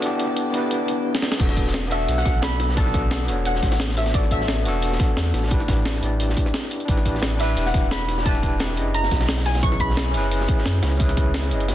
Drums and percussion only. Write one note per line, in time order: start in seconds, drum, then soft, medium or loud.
0.02 closed hi-hat medium
0.20 closed hi-hat medium
0.37 closed hi-hat medium
0.54 closed hi-hat medium
0.71 closed hi-hat medium
0.88 closed hi-hat medium
1.15 snare medium
1.22 snare medium
1.32 snare medium
1.39 kick loud
1.39 closed hi-hat medium
1.39 crash loud
1.49 snare soft
1.57 kick medium
1.57 closed hi-hat medium
1.66 snare medium
1.74 snare loud
1.74 closed hi-hat loud
1.74 closed hi-hat medium
1.91 closed hi-hat medium
2.08 closed hi-hat medium
2.18 snare soft
2.25 kick loud
2.25 snare medium
2.25 closed hi-hat medium
2.42 snare loud
2.42 closed hi-hat medium
2.60 snare soft
2.60 closed hi-hat medium
2.69 snare medium
2.77 kick loud
2.77 closed hi-hat medium
2.86 snare soft
2.94 kick loud
2.94 closed hi-hat medium
3.11 snare loud
3.11 closed hi-hat medium
3.11 closed hi-hat loud
3.21 snare soft
3.28 closed hi-hat medium
3.45 closed hi-hat medium
3.55 snare medium
3.62 kick medium
3.62 snare medium
3.62 closed hi-hat medium
3.71 snare loud
3.71 snare soft
3.71 closed hi-hat medium
3.80 snare loud
3.80 closed hi-hat medium
3.89 snare medium
3.89 closed hi-hat medium
3.97 snare loud
3.97 closed hi-hat medium
4.06 snare loud
4.06 closed hi-hat medium
4.14 kick loud
4.14 closed hi-hat medium
4.23 snare soft
4.31 kick medium
4.31 closed hi-hat medium
4.41 snare medium
4.48 snare loud
4.48 closed hi-hat medium
4.65 closed hi-hat medium
4.82 closed hi-hat medium
4.92 snare medium
5.00 kick loud
5.00 snare medium
5.00 closed hi-hat medium
5.17 snare loud
5.17 closed hi-hat medium
5.34 snare soft
5.34 closed hi-hat medium
5.43 snare soft
5.51 kick loud
5.51 closed hi-hat medium
5.60 snare soft
5.68 kick loud
5.68 snare loud
5.68 closed hi-hat medium
5.85 snare loud
5.85 closed hi-hat medium
5.95 snare soft
5.95 closed hi-hat soft
6.03 closed hi-hat medium
6.20 closed hi-hat medium
6.29 snare soft
6.37 kick medium
6.37 closed hi-hat medium
6.46 snare soft
6.54 snare loud
6.54 closed hi-hat medium
6.64 snare soft
6.71 closed hi-hat medium
6.80 closed hi-hat soft
6.88 kick loud
6.88 closed hi-hat medium
6.97 snare soft
7.06 kick medium
7.06 closed hi-hat medium
7.15 snare soft
7.22 snare loud
7.22 closed hi-hat medium
7.40 closed hi-hat medium
7.57 closed hi-hat medium
7.66 snare medium
7.74 kick loud
7.74 snare medium
7.74 closed hi-hat medium
7.91 snare loud
7.91 closed hi-hat medium
8.09 snare soft
8.09 closed hi-hat medium
8.18 snare medium
8.26 kick loud
8.26 closed hi-hat medium
8.35 snare soft
8.43 kick loud
8.43 closed hi-hat medium
8.60 snare loud
8.60 closed hi-hat medium
8.69 snare soft
8.77 closed hi-hat medium
8.94 closed hi-hat medium
9.03 snare medium
9.11 kick medium
9.11 snare medium
9.11 closed hi-hat medium
9.20 snare loud
9.20 snare soft
9.20 closed hi-hat medium
9.28 snare loud
9.28 closed hi-hat medium
9.38 snare loud
9.38 closed hi-hat medium
9.45 snare loud
9.45 closed hi-hat medium
9.55 snare loud
9.55 closed hi-hat medium
9.63 kick loud
9.63 closed hi-hat medium
9.72 snare soft
9.80 kick medium
9.80 closed hi-hat medium
9.90 snare medium
9.97 snare loud
9.97 closed hi-hat loud
9.97 closed hi-hat medium
10.14 closed hi-hat medium
10.31 closed hi-hat medium
10.40 snare medium
10.48 kick loud
10.48 closed hi-hat medium
10.58 snare soft
10.65 snare medium
10.65 snare loud
10.65 closed hi-hat loud
10.65 closed hi-hat medium
10.83 snare loud
10.83 snare soft
10.83 closed hi-hat medium
11.00 kick loud
11.00 closed hi-hat medium
11.09 snare soft
11.09 closed hi-hat soft
11.17 kick loud
11.17 closed hi-hat medium
11.34 snare loud
11.34 closed hi-hat medium
11.34 closed hi-hat loud
11.43 snare soft
11.43 closed hi-hat soft
11.51 closed hi-hat medium
11.60 closed hi-hat soft
11.68 snare medium
11.68 closed hi-hat loud
11.68 closed hi-hat medium